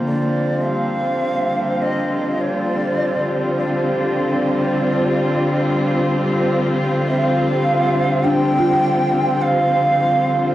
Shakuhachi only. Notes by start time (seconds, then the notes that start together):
0.07 D5
0.65 F5
1.82 D#5
2.41 C#5
2.55 D5
3.58 D5
7.07 E5
7.23 F5
8.24 G5
9.42 F5